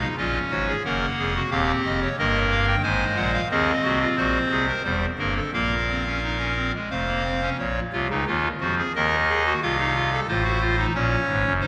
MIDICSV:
0, 0, Header, 1, 2, 480
1, 0, Start_track
1, 0, Key_signature, -5, "major"
1, 0, Tempo, 667408
1, 1094, Time_signature, 3, 2, 24, 8
1, 2527, Key_signature, -5, "minor"
1, 3489, Tempo, 685714
1, 5409, Tempo, 673401
1, 8316, End_track
2, 0, Start_track
2, 0, Title_t, "Pipe organ"
2, 0, Program_c, 0, 19
2, 0, Note_on_c, 0, 63, 59
2, 108, Note_off_c, 0, 63, 0
2, 124, Note_on_c, 0, 46, 62
2, 126, Note_on_c, 0, 61, 61
2, 127, Note_on_c, 0, 65, 69
2, 127, Note_on_c, 0, 75, 64
2, 128, Note_on_c, 0, 34, 73
2, 276, Note_off_c, 0, 46, 0
2, 278, Note_off_c, 0, 34, 0
2, 278, Note_off_c, 0, 65, 0
2, 278, Note_off_c, 0, 75, 0
2, 364, Note_on_c, 0, 66, 71
2, 367, Note_on_c, 0, 44, 68
2, 368, Note_on_c, 0, 32, 71
2, 368, Note_on_c, 0, 73, 66
2, 471, Note_off_c, 0, 66, 0
2, 490, Note_on_c, 0, 68, 76
2, 518, Note_off_c, 0, 32, 0
2, 518, Note_off_c, 0, 44, 0
2, 519, Note_off_c, 0, 73, 0
2, 543, Note_off_c, 0, 61, 0
2, 595, Note_off_c, 0, 68, 0
2, 609, Note_on_c, 0, 30, 74
2, 610, Note_on_c, 0, 58, 71
2, 610, Note_on_c, 0, 78, 77
2, 611, Note_on_c, 0, 70, 71
2, 612, Note_on_c, 0, 42, 68
2, 760, Note_off_c, 0, 30, 0
2, 761, Note_off_c, 0, 42, 0
2, 761, Note_off_c, 0, 70, 0
2, 853, Note_on_c, 0, 29, 67
2, 856, Note_on_c, 0, 41, 68
2, 856, Note_on_c, 0, 68, 74
2, 958, Note_off_c, 0, 68, 0
2, 979, Note_on_c, 0, 66, 73
2, 1002, Note_off_c, 0, 29, 0
2, 1004, Note_off_c, 0, 41, 0
2, 1025, Note_off_c, 0, 58, 0
2, 1025, Note_off_c, 0, 78, 0
2, 1080, Note_off_c, 0, 66, 0
2, 1084, Note_on_c, 0, 27, 77
2, 1084, Note_on_c, 0, 77, 86
2, 1085, Note_on_c, 0, 39, 73
2, 1085, Note_on_c, 0, 67, 75
2, 1088, Note_on_c, 0, 60, 72
2, 1236, Note_off_c, 0, 27, 0
2, 1236, Note_off_c, 0, 77, 0
2, 1237, Note_off_c, 0, 39, 0
2, 1332, Note_on_c, 0, 75, 92
2, 1333, Note_on_c, 0, 29, 84
2, 1333, Note_on_c, 0, 41, 78
2, 1436, Note_off_c, 0, 75, 0
2, 1449, Note_on_c, 0, 73, 67
2, 1481, Note_off_c, 0, 29, 0
2, 1482, Note_off_c, 0, 41, 0
2, 1501, Note_off_c, 0, 67, 0
2, 1502, Note_off_c, 0, 60, 0
2, 1553, Note_off_c, 0, 73, 0
2, 1570, Note_on_c, 0, 43, 77
2, 1572, Note_on_c, 0, 58, 70
2, 1572, Note_on_c, 0, 75, 91
2, 1573, Note_on_c, 0, 31, 79
2, 1574, Note_on_c, 0, 70, 80
2, 1720, Note_off_c, 0, 75, 0
2, 1808, Note_on_c, 0, 77, 87
2, 1912, Note_off_c, 0, 77, 0
2, 1924, Note_on_c, 0, 79, 87
2, 1981, Note_off_c, 0, 43, 0
2, 1982, Note_off_c, 0, 58, 0
2, 1983, Note_off_c, 0, 31, 0
2, 1983, Note_off_c, 0, 70, 0
2, 2029, Note_off_c, 0, 79, 0
2, 2035, Note_on_c, 0, 44, 79
2, 2035, Note_on_c, 0, 72, 79
2, 2035, Note_on_c, 0, 80, 95
2, 2036, Note_on_c, 0, 32, 78
2, 2037, Note_on_c, 0, 56, 72
2, 2187, Note_off_c, 0, 80, 0
2, 2188, Note_off_c, 0, 32, 0
2, 2188, Note_off_c, 0, 44, 0
2, 2274, Note_on_c, 0, 78, 91
2, 2275, Note_on_c, 0, 34, 80
2, 2275, Note_on_c, 0, 46, 83
2, 2383, Note_off_c, 0, 78, 0
2, 2396, Note_on_c, 0, 77, 89
2, 2427, Note_off_c, 0, 34, 0
2, 2427, Note_off_c, 0, 46, 0
2, 2452, Note_off_c, 0, 72, 0
2, 2453, Note_off_c, 0, 56, 0
2, 2503, Note_off_c, 0, 77, 0
2, 2521, Note_on_c, 0, 51, 84
2, 2521, Note_on_c, 0, 60, 82
2, 2524, Note_on_c, 0, 39, 84
2, 2525, Note_on_c, 0, 75, 86
2, 2526, Note_on_c, 0, 68, 88
2, 2671, Note_off_c, 0, 51, 0
2, 2673, Note_off_c, 0, 39, 0
2, 2674, Note_off_c, 0, 68, 0
2, 2761, Note_on_c, 0, 66, 84
2, 2763, Note_on_c, 0, 48, 74
2, 2764, Note_on_c, 0, 36, 82
2, 2866, Note_off_c, 0, 66, 0
2, 2886, Note_on_c, 0, 65, 71
2, 2912, Note_off_c, 0, 48, 0
2, 2913, Note_off_c, 0, 36, 0
2, 2937, Note_off_c, 0, 75, 0
2, 2989, Note_off_c, 0, 65, 0
2, 3001, Note_on_c, 0, 46, 76
2, 3002, Note_on_c, 0, 72, 76
2, 3003, Note_on_c, 0, 66, 89
2, 3004, Note_on_c, 0, 34, 80
2, 3151, Note_off_c, 0, 46, 0
2, 3153, Note_off_c, 0, 34, 0
2, 3153, Note_off_c, 0, 66, 0
2, 3239, Note_on_c, 0, 36, 70
2, 3240, Note_on_c, 0, 48, 67
2, 3244, Note_on_c, 0, 68, 81
2, 3349, Note_off_c, 0, 68, 0
2, 3350, Note_off_c, 0, 60, 0
2, 3366, Note_on_c, 0, 70, 82
2, 3392, Note_off_c, 0, 36, 0
2, 3392, Note_off_c, 0, 48, 0
2, 3469, Note_off_c, 0, 72, 0
2, 3471, Note_off_c, 0, 70, 0
2, 3483, Note_on_c, 0, 55, 68
2, 3483, Note_on_c, 0, 72, 72
2, 3484, Note_on_c, 0, 28, 65
2, 3487, Note_on_c, 0, 40, 60
2, 3632, Note_off_c, 0, 55, 0
2, 3632, Note_off_c, 0, 72, 0
2, 3633, Note_off_c, 0, 28, 0
2, 3635, Note_off_c, 0, 40, 0
2, 3722, Note_on_c, 0, 43, 67
2, 3723, Note_on_c, 0, 58, 66
2, 3725, Note_on_c, 0, 31, 65
2, 3725, Note_on_c, 0, 70, 81
2, 3828, Note_off_c, 0, 70, 0
2, 3847, Note_on_c, 0, 69, 66
2, 3871, Note_off_c, 0, 43, 0
2, 3872, Note_off_c, 0, 58, 0
2, 3874, Note_off_c, 0, 31, 0
2, 3949, Note_off_c, 0, 69, 0
2, 3966, Note_on_c, 0, 58, 72
2, 3968, Note_on_c, 0, 77, 73
2, 3969, Note_on_c, 0, 46, 64
2, 3969, Note_on_c, 0, 70, 64
2, 3972, Note_on_c, 0, 34, 67
2, 4116, Note_off_c, 0, 58, 0
2, 4217, Note_on_c, 0, 60, 63
2, 4317, Note_off_c, 0, 60, 0
2, 4339, Note_on_c, 0, 61, 49
2, 4438, Note_off_c, 0, 61, 0
2, 4455, Note_on_c, 0, 63, 59
2, 4556, Note_off_c, 0, 63, 0
2, 4565, Note_on_c, 0, 61, 58
2, 4670, Note_off_c, 0, 61, 0
2, 4688, Note_on_c, 0, 60, 57
2, 4792, Note_off_c, 0, 60, 0
2, 4796, Note_off_c, 0, 46, 0
2, 4796, Note_off_c, 0, 70, 0
2, 4796, Note_off_c, 0, 77, 0
2, 4798, Note_off_c, 0, 34, 0
2, 4813, Note_on_c, 0, 56, 57
2, 4914, Note_off_c, 0, 56, 0
2, 4928, Note_on_c, 0, 29, 62
2, 4928, Note_on_c, 0, 57, 55
2, 4928, Note_on_c, 0, 77, 67
2, 4929, Note_on_c, 0, 41, 62
2, 4929, Note_on_c, 0, 72, 60
2, 5032, Note_off_c, 0, 57, 0
2, 5045, Note_on_c, 0, 58, 57
2, 5150, Note_off_c, 0, 58, 0
2, 5168, Note_on_c, 0, 60, 64
2, 5272, Note_off_c, 0, 60, 0
2, 5288, Note_on_c, 0, 61, 63
2, 5341, Note_off_c, 0, 29, 0
2, 5341, Note_off_c, 0, 41, 0
2, 5341, Note_off_c, 0, 77, 0
2, 5342, Note_off_c, 0, 72, 0
2, 5391, Note_off_c, 0, 61, 0
2, 5405, Note_on_c, 0, 34, 71
2, 5405, Note_on_c, 0, 46, 71
2, 5405, Note_on_c, 0, 73, 67
2, 5556, Note_off_c, 0, 34, 0
2, 5556, Note_off_c, 0, 46, 0
2, 5557, Note_off_c, 0, 73, 0
2, 5647, Note_on_c, 0, 65, 100
2, 5648, Note_on_c, 0, 48, 79
2, 5650, Note_on_c, 0, 36, 84
2, 5752, Note_off_c, 0, 65, 0
2, 5753, Note_off_c, 0, 48, 0
2, 5754, Note_off_c, 0, 36, 0
2, 5767, Note_on_c, 0, 49, 71
2, 5770, Note_on_c, 0, 37, 54
2, 5772, Note_on_c, 0, 63, 73
2, 5872, Note_off_c, 0, 49, 0
2, 5874, Note_off_c, 0, 37, 0
2, 5875, Note_off_c, 0, 63, 0
2, 5891, Note_on_c, 0, 39, 77
2, 5891, Note_on_c, 0, 65, 84
2, 5893, Note_on_c, 0, 51, 74
2, 6040, Note_off_c, 0, 39, 0
2, 6040, Note_off_c, 0, 65, 0
2, 6041, Note_off_c, 0, 51, 0
2, 6130, Note_on_c, 0, 66, 80
2, 6131, Note_on_c, 0, 53, 76
2, 6134, Note_on_c, 0, 41, 70
2, 6235, Note_off_c, 0, 66, 0
2, 6256, Note_on_c, 0, 68, 94
2, 6281, Note_off_c, 0, 53, 0
2, 6282, Note_off_c, 0, 41, 0
2, 6358, Note_off_c, 0, 68, 0
2, 6376, Note_on_c, 0, 75, 67
2, 6377, Note_on_c, 0, 51, 77
2, 6378, Note_on_c, 0, 39, 81
2, 6378, Note_on_c, 0, 70, 94
2, 6525, Note_off_c, 0, 70, 0
2, 6619, Note_on_c, 0, 68, 94
2, 6720, Note_off_c, 0, 68, 0
2, 6741, Note_on_c, 0, 66, 91
2, 6787, Note_off_c, 0, 75, 0
2, 6788, Note_off_c, 0, 51, 0
2, 6789, Note_off_c, 0, 39, 0
2, 6841, Note_off_c, 0, 66, 0
2, 6853, Note_on_c, 0, 65, 96
2, 6855, Note_on_c, 0, 36, 77
2, 6855, Note_on_c, 0, 48, 78
2, 6856, Note_on_c, 0, 77, 69
2, 6956, Note_off_c, 0, 65, 0
2, 6973, Note_on_c, 0, 63, 84
2, 7075, Note_off_c, 0, 63, 0
2, 7092, Note_on_c, 0, 65, 96
2, 7195, Note_off_c, 0, 65, 0
2, 7214, Note_on_c, 0, 69, 76
2, 7266, Note_off_c, 0, 36, 0
2, 7266, Note_off_c, 0, 48, 0
2, 7266, Note_off_c, 0, 77, 0
2, 7316, Note_off_c, 0, 69, 0
2, 7324, Note_on_c, 0, 65, 94
2, 7326, Note_on_c, 0, 33, 77
2, 7326, Note_on_c, 0, 72, 71
2, 7328, Note_on_c, 0, 45, 74
2, 7430, Note_off_c, 0, 65, 0
2, 7437, Note_on_c, 0, 66, 92
2, 7547, Note_off_c, 0, 66, 0
2, 7557, Note_on_c, 0, 65, 93
2, 7666, Note_off_c, 0, 65, 0
2, 7676, Note_on_c, 0, 63, 93
2, 7741, Note_off_c, 0, 33, 0
2, 7741, Note_off_c, 0, 72, 0
2, 7742, Note_off_c, 0, 45, 0
2, 7786, Note_off_c, 0, 63, 0
2, 7798, Note_on_c, 0, 34, 78
2, 7798, Note_on_c, 0, 46, 83
2, 7799, Note_on_c, 0, 61, 96
2, 7800, Note_on_c, 0, 73, 80
2, 7950, Note_off_c, 0, 34, 0
2, 7950, Note_off_c, 0, 46, 0
2, 8042, Note_on_c, 0, 44, 74
2, 8044, Note_on_c, 0, 32, 82
2, 8148, Note_off_c, 0, 44, 0
2, 8149, Note_off_c, 0, 32, 0
2, 8161, Note_on_c, 0, 42, 78
2, 8163, Note_on_c, 0, 30, 83
2, 8214, Note_off_c, 0, 61, 0
2, 8214, Note_off_c, 0, 73, 0
2, 8266, Note_off_c, 0, 42, 0
2, 8267, Note_off_c, 0, 30, 0
2, 8271, Note_on_c, 0, 72, 81
2, 8273, Note_on_c, 0, 63, 89
2, 8316, Note_off_c, 0, 63, 0
2, 8316, Note_off_c, 0, 72, 0
2, 8316, End_track
0, 0, End_of_file